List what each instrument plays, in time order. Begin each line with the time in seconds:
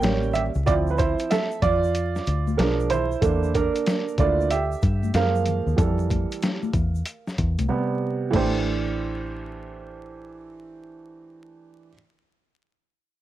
Already playing: upright piano A#4 G5
0.02 fingered electric bass A1, upright piano G3 A#3 C#4, snare, closed hi-hat, shaker
0.23 shaker
0.33 upright piano G4 E5, closed hi-hat, low conga, shaker
0.54 fingered electric bass C#2, shaker
0.66 fingered electric bass D2, upright piano F3 C4 E4 F4 D5, kick, closed hi-hat, shaker
0.87 upright piano B4, shaker
0.98 upright piano E4 C5, kick, closed hi-hat, shaker
1.19 closed hi-hat, shaker
1.31 upright piano A4 E5, snare, closed hi-hat, high conga, shaker
1.51 shaker
1.62 fingered electric bass F2, upright piano F4 D5, kick, closed hi-hat, low conga, shaker
1.84 shaker
1.95 closed hi-hat, shaker
2.16 snare, shaker
2.26 fingered electric bass D2, closed hi-hat, shaker
2.47 high conga, shaker
2.57 fingered electric bass B1, upright piano F3 G#3 D4 A#4, snare, closed hi-hat, shaker
2.80 shaker
2.90 upright piano E4 C5, closed hi-hat, low conga, shaker
3.12 shaker
3.21 fingered electric bass E2, upright piano D3 A#3 D4 A4, kick, closed hi-hat, shaker
3.43 shaker
3.55 upright piano D4 A#4, kick, closed hi-hat, shaker
3.75 closed hi-hat, shaker
3.86 snare, closed hi-hat, high conga, shaker
4.08 shaker
4.18 fingered electric bass D2, upright piano A3 A#3 D4 E4 F4 D5, kick, closed hi-hat, low conga, shaker
4.41 shaker
4.50 upright piano G4 E5, closed hi-hat, shaker
4.72 shaker
4.82 fingered electric bass G2, kick, closed hi-hat, shaker
5.03 high conga, shaker
5.14 fingered electric bass F#2, upright piano F3 G#3 A#3 A#4 F5, snare, closed hi-hat, shaker
5.35 shaker
5.46 closed hi-hat, low conga, shaker
5.66 fingered electric bass D#2, shaker
5.76 fingered electric bass F2, upright piano E3 G3 A4, kick, closed hi-hat, shaker
5.99 shaker
6.10 kick, closed hi-hat, high conga, shaker
6.32 closed hi-hat, shaker
6.42 snare, closed hi-hat, high conga, shaker
6.63 high conga, shaker
6.73 fingered electric bass E2, kick, closed hi-hat, low conga, shaker
6.95 shaker
7.06 closed hi-hat, shaker
7.27 snare, shaker
7.38 fingered electric bass E2, kick, closed hi-hat, shaker
7.59 fingered electric bass C2, closed hi-hat, high conga, shaker
7.68 upright piano C3 G3 B3
8.31 fingered electric bass A1, upright piano E3 A3 D4, kick, crash, high conga
8.35 upright piano G4 C5